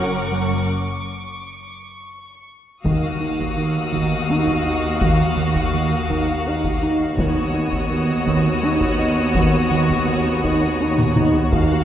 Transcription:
Already playing: F#1 F#2 F#3 C#4 A#4 F#5 C#6 D6
0.31 F#3
2.84 D#2 D#3 A#3 F#4 F5 D#6 E6, taiko
3.20 D#3
3.40 taiko
3.57 D#3
3.92 D#3, taiko
4.29 D#4
4.47 taiko
4.66 D#4
5.01 D#3, taiko
5.37 D#3
5.55 taiko
5.74 D#3
6.10 D#3, taiko
6.46 D#4
6.64 taiko
6.83 D#4
7.17 D#2 D#3 B3 F#4 C#5 D#6 E6, taiko
7.54 D#3
7.72 taiko
7.90 D#3
8.26 D#3, taiko
8.63 D#4
8.81 taiko
8.99 D#4
9.34 D#3, taiko
9.71 D#3
9.89 taiko
10.08 D#3
10.43 D#3, taiko
10.80 D#4
10.98 taiko mid
11.16 D#4, taiko mid
11.34 taiko low
11.51 D#2 D#3 A#3 F#4 F5 A#5, taiko

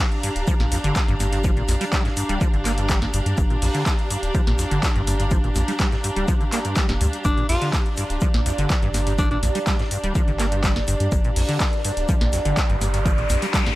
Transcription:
Already playing: D4 G4 F5 A#5
0.12 closed hi-hat
0.23 G2, open hi-hat, shaker
0.36 D1, closed hi-hat
0.48 F3, kick, closed hi-hat, shaker
0.60 A#1 A#2, snare, closed hi-hat
0.72 F2, snare, open hi-hat, shaker
0.84 G1 D3, closed hi-hat
0.96 G3, kick, snare, clap, closed hi-hat, shaker
1.08 G1 G2, closed hi-hat
1.20 G2, snare, open hi-hat, shaker
1.32 G2, closed hi-hat
1.44 F3, kick, closed hi-hat, shaker
1.57 A#2, closed hi-hat
1.68 A#1 F2, snare, open hi-hat, shaker
1.81 G3, closed hi-hat
1.93 G3, kick, snare, clap, closed hi-hat, shaker
2.05 G#2, snare, closed hi-hat
2.17 G2, open hi-hat, shaker
2.29 D1 G3, closed hi-hat
2.41 F3, kick, closed hi-hat, shaker
2.53 G1 D3, closed hi-hat
2.65 A#3, snare, clap, open hi-hat, shaker
2.78 G2, closed hi-hat
2.89 G3, kick, snare, clap, closed hi-hat, shaker
3.02 G2, snare, closed hi-hat
3.14 G1 G2, open hi-hat, shaker
3.26 G2, closed hi-hat
3.38 G1 G2, kick, closed hi-hat, shaker
3.50 A#2, closed hi-hat
3.62 A#1 F2, open hi-hat
3.74 D3, closed hi-hat
3.86 kick, snare, clap, closed hi-hat, shaker
3.99 closed hi-hat
4.10 G2, open hi-hat, shaker
4.23 D1, closed hi-hat
4.35 F3, kick, closed hi-hat, shaker
4.47 A#1 A#2, snare, closed hi-hat
4.58 F2, snare, open hi-hat, shaker
4.71 G1 D3, closed hi-hat
4.83 G3, kick, snare, clap, closed hi-hat, shaker
4.96 G1 G2, closed hi-hat
5.07 G2, snare, open hi-hat, shaker
5.20 G2, closed hi-hat
5.31 F3, kick, closed hi-hat, shaker
5.44 A#2, closed hi-hat
5.55 A#1 F2, snare, open hi-hat, shaker
5.68 G3, closed hi-hat
5.79 G3, kick, snare, clap, closed hi-hat, shaker
5.92 G#2, snare, closed hi-hat
6.04 G2, open hi-hat, shaker
6.16 D1 G3, closed hi-hat
6.28 F3, kick, closed hi-hat, shaker
6.41 D3, closed hi-hat
6.52 A#3, snare, clap, open hi-hat, shaker
6.65 G2, closed hi-hat
6.76 G3, kick, snare, clap, closed hi-hat, shaker
6.89 F1 G2, snare, closed hi-hat
7.01 D2 G2, open hi-hat, shaker
7.13 closed hi-hat
7.25 G1 G2 D4 D5, kick, closed hi-hat, shaker
7.37 A#2, closed hi-hat
7.49 A#1 F2 F4, open hi-hat
7.62 D3, closed hi-hat
7.72 kick, snare, clap, closed hi-hat, shaker
7.86 closed hi-hat
7.97 G2, open hi-hat, shaker
8.10 D1, closed hi-hat
8.21 F3, kick, closed hi-hat, shaker
8.34 A#1 A#2, snare, closed hi-hat
8.45 F2, snare, open hi-hat, shaker
8.58 G1 D3, closed hi-hat
8.70 G3, kick, snare, clap, closed hi-hat, shaker
8.83 G1 G2, closed hi-hat
8.94 G2, snare, open hi-hat, shaker
9.07 G2, closed hi-hat
9.19 F3 D4, kick, closed hi-hat, shaker
9.31 A#2 D4, closed hi-hat
9.43 A#1 F2, snare, open hi-hat, shaker
9.55 G3, closed hi-hat
9.67 G3, kick, snare, clap, closed hi-hat, shaker
9.79 G#2, snare, closed hi-hat
9.91 G2, open hi-hat, shaker
10.04 D1 G3, closed hi-hat
10.15 F3, kick, closed hi-hat, shaker
10.28 G1 D3, closed hi-hat
10.39 A#3, snare, clap, open hi-hat, shaker
10.52 G2, closed hi-hat
10.64 G3, kick, snare, clap, closed hi-hat, shaker
10.76 G2, snare, closed hi-hat
10.88 G1 G2, open hi-hat, shaker
11.00 G2, closed hi-hat
11.12 G1 G2, kick, closed hi-hat, riser, shaker
11.24 A#2, closed hi-hat
11.36 A#1 F2, open hi-hat
11.49 D3, closed hi-hat
11.60 kick, snare, clap, closed hi-hat, shaker
11.73 closed hi-hat
11.85 G2, open hi-hat, shaker
11.97 D1, closed hi-hat
12.09 F3, kick, closed hi-hat, shaker
12.21 A#1 A#2, snare, closed hi-hat
12.33 F2, snare, open hi-hat, shaker
12.45 G1 D3, closed hi-hat
12.57 G3, kick, snare, clap, closed hi-hat, shaker
12.70 G1 G2, closed hi-hat
12.81 G2, snare, open hi-hat, shaker
12.94 G2, closed hi-hat
13.06 F3, kick, closed hi-hat, shaker
13.18 A#2, closed hi-hat
13.30 A#1 F2, snare, open hi-hat, shaker
13.42 G3, closed hi-hat
13.53 G3, kick, snare, clap, closed hi-hat, shaker
13.66 G#2, snare, closed hi-hat

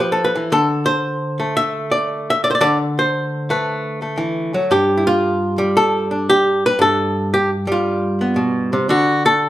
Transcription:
Already playing: G3 G4
0.00 F3 B4
0.12 A4
0.25 B4
0.36 E3
0.52 D3 A4
0.86 C5
1.40 A3
1.57 E5
1.91 D5
2.30 E5
2.44 D5
2.51 C5
2.55 D5
2.61 D3 D5
2.99 C5
3.50 A3 B4
4.02 A3
4.18 E3
4.54 F#3
4.71 G2 G4
4.97 E4
5.07 F4
5.58 G3
5.77 A4
6.11 D4
6.30 G4
6.66 B4
6.79 G2 A4
7.34 G4
7.67 G3
7.72 F4
8.21 B3
8.36 B2
8.73 C3
8.89 D3 F#4
9.26 A4

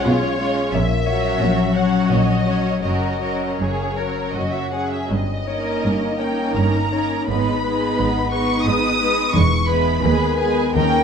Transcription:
Already playing: B2 G#3 B3 C#4 F4 C#5
0.04 B1 B2 F4 C#5
0.38 G#3 C#4 F4 C#5
0.73 A#1 A#2 E5
1.06 F#3 C#4 F#4 C#5
1.41 A#1 A#2 F#3
1.74 F#3 C#4 F#4 C#5 F#5
2.09 A#1 A#2 F#4 D#5
2.46 F#3 C#4 F#4 C#5
2.82 F#1 F#2 F#3 C#4 F#4 A#4 D#5
3.20 F#3 C#4 F#4 A#4 C#5
3.59 F#1 F#2 A#3 G#4 C#5
3.96 F#3 C#4 A#4 C#5
4.33 F#1 F#2 F#4 D#5
4.52 E5
4.72 F#3 C#4 G#4 C#5 F#5
4.91 E5
5.10 G1 G2 D#5
5.47 A#3 C#4 D#4 A#4 C#5
5.84 G1 G2 A#3
6.19 A#3 C#4 D#4 A#4 C#5 G5
6.55 G1 G2 D#4 A#5
6.91 A#3 C#4 D#4 A#4 C#5
7.28 G#1 G#2 G#3 B3 D#4 B4 B5
7.64 G#3 B3 D#4 B4
7.98 G#1 G#2 B3
8.32 G#3 B3 D#4 B4 C#6
8.65 G#1 G#2 D#4 D#6
8.99 G#3 B3 D#4 B4
9.32 E1 E2 E3 C#6
9.67 G#3 B3 E4 G#4 B4 B5
10.02 D#2 D#3 G#3 B3 G#4 B4
10.37 G#3 G#4 B4 G#5
10.41 B3
10.75 D#2 D#3 A#3 C#4 D#4 A#4 G5

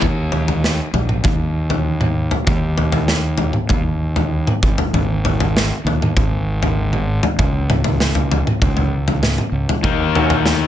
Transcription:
0.02 D#2, kick, floor tom
0.32 floor tom
0.48 floor tom
0.64 snare
0.93 A#1, floor tom
1.09 mid tom
1.24 D#2, kick, floor tom
1.70 floor tom
2.01 mid tom
2.31 floor tom
2.47 D#2, kick, floor tom
2.78 floor tom
2.92 floor tom
3.08 snare
3.38 floor tom
3.53 mid tom
3.69 D#2, kick, floor tom
4.16 floor tom
4.47 mid tom
4.62 G#1, kick
4.78 floor tom
4.93 G#1, floor tom
5.25 floor tom
5.40 floor tom
5.57 snare
5.85 D#2, floor tom
6.02 mid tom
6.16 G#1, kick, floor tom
6.63 floor tom
6.93 mid tom
7.23 floor tom
7.38 C#2, kick, floor tom
7.70 floor tom, mid tom
7.84 floor tom
8.00 snare
8.15 floor tom
8.31 floor tom
8.47 mid tom
8.62 C#2, kick, floor tom
8.77 floor tom
9.08 floor tom
9.23 snare, mid tom
9.38 mid tom
9.52 C#2
9.69 floor tom
9.83 D#2 D#3 A#3 D#4, kick, floor tom
10.00 muted clean electric guitar stroke
10.15 D#3 A#3 C#4 F#4, floor tom
10.30 floor tom
10.45 muted clean electric guitar stroke, snare

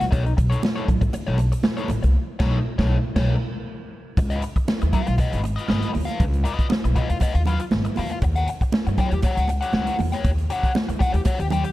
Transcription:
0.00 C2, muted overdriven electric guitar stroke, snare, closed hi-hat
0.11 B1 D#4 A4 C#5, kick, closed hi-hat, muted conga
0.24 muted overdriven electric guitar stroke, closed hi-hat
0.37 B1, muted overdriven electric guitar stroke, kick, closed hi-hat
0.50 D#4 A4 C#5, closed hi-hat
0.62 muted overdriven electric guitar stroke, snare, high conga
0.76 D#4 A4 C#5, closed hi-hat
0.88 A1, muted overdriven electric guitar stroke, kick, closed hi-hat, low conga
1.01 muted overdriven electric guitar stroke, kick, closed hi-hat
1.13 muted overdriven electric guitar stroke, muted upright bass stroke, closed hi-hat, muted conga
1.27 B1 D#4 A4 C#5
1.38 muted overdriven electric guitar stroke, closed hi-hat, muted conga
1.52 muted overdriven electric guitar stroke, closed hi-hat
1.63 muted overdriven electric guitar stroke, snare, high conga
1.77 D#4 A4 C#5, closed hi-hat
1.88 A1, muted overdriven electric guitar stroke, closed hi-hat, high conga
2.03 C2, muted overdriven electric guitar stroke, closed hi-hat
2.39 B1 D#4 A4 C#5, kick, snare, crash
2.78 B1 D#4 A4 C#5, kick, snare
3.16 B1 D#4 A4 C#5, kick, snare, crash
4.17 C#2, muted overdriven electric guitar stroke, kick, closed hi-hat, muted conga
4.30 F4 B4 D#5, closed hi-hat
4.42 muted overdriven electric guitar stroke, closed hi-hat
4.56 muted upright bass stroke, muted overdriven electric guitar stroke, kick, closed hi-hat
4.68 snare, high conga
4.81 D#2, muted overdriven electric guitar stroke, closed hi-hat
4.93 F4 B4 F5, kick, closed hi-hat, muted conga, low conga
5.07 B1, muted overdriven electric guitar stroke, closed hi-hat
5.18 F4 B4 D#5, muted upright bass stroke, kick, closed hi-hat, muted conga
5.33 G#1, closed hi-hat
5.43 muted overdriven electric guitar stroke, closed hi-hat, muted conga
5.56 F4 B4 D#5, closed hi-hat
5.68 G#1 F4 B4 D#5, snare, high conga
5.82 closed hi-hat
5.93 D2, muted overdriven electric guitar stroke, open hi-hat, high conga
6.05 F4 B4 F5, snare, closed hi-hat
6.20 C#2, kick, closed hi-hat, muted conga
6.33 closed hi-hat
6.44 F4 B4 D#5, closed hi-hat
6.59 muted upright bass stroke, kick, closed hi-hat
6.69 muted overdriven electric guitar stroke, snare, high conga
6.84 B1, muted overdriven electric guitar stroke, closed hi-hat
6.96 F4 B4 D#5, kick, closed hi-hat
7.10 D#2, muted overdriven electric guitar stroke, closed hi-hat
7.20 F4 B4 D#5, muted upright bass stroke, kick, closed hi-hat, muted conga
7.35 D#2, muted overdriven electric guitar stroke, closed hi-hat
7.45 F4 B4 F5, closed hi-hat, muted conga, low conga
7.60 muted overdriven electric guitar stroke, closed hi-hat
7.71 G#1, muted overdriven electric guitar stroke, snare, high conga
7.85 muted overdriven electric guitar stroke, closed hi-hat
7.96 E2 F4 B4 F5, open hi-hat, high conga
8.10 muted overdriven electric guitar stroke, closed hi-hat
8.22 D#2, muted overdriven electric guitar stroke, kick, closed hi-hat, muted conga
8.36 G4 C#5 F#5, closed hi-hat
8.48 muted overdriven electric guitar stroke, closed hi-hat
8.61 muted upright bass stroke, muted overdriven electric guitar stroke, kick, closed hi-hat
8.72 snare, high conga
8.87 G2, muted overdriven electric guitar stroke, closed hi-hat
8.98 G4 C#5 G5, kick, closed hi-hat, muted conga, low conga
9.11 D#2, muted overdriven electric guitar stroke, closed hi-hat
9.22 G4 C#5 F#5, muted upright bass stroke, kick, closed hi-hat, muted conga
9.37 C#2, closed hi-hat
9.48 muted overdriven electric guitar stroke, closed hi-hat, muted conga
9.61 G4 C#5 F#5, closed hi-hat
9.73 C#2 G4 C#5 F#5, snare, high conga
9.87 closed hi-hat
9.99 E2, muted overdriven electric guitar stroke, open hi-hat, high conga
10.12 G4 C#5 G5, snare, closed hi-hat
10.25 D#2, kick, closed hi-hat, muted conga
10.38 closed hi-hat
10.50 G4 C#5 F#5, closed hi-hat
10.63 muted upright bass stroke, kick, closed hi-hat
10.75 muted overdriven electric guitar stroke, snare, high conga
10.89 C#2, muted overdriven electric guitar stroke, closed hi-hat
10.99 G4 C#5 F#5, kick, closed hi-hat, muted conga
11.13 D#2, muted overdriven electric guitar stroke, closed hi-hat
11.25 G4 C#5 F#5, muted upright bass stroke, kick, closed hi-hat, muted conga
11.39 D#2, muted overdriven electric guitar stroke, closed hi-hat
11.50 G4 C#5 G5, closed hi-hat, muted conga, low conga
11.64 muted overdriven electric guitar stroke, closed hi-hat

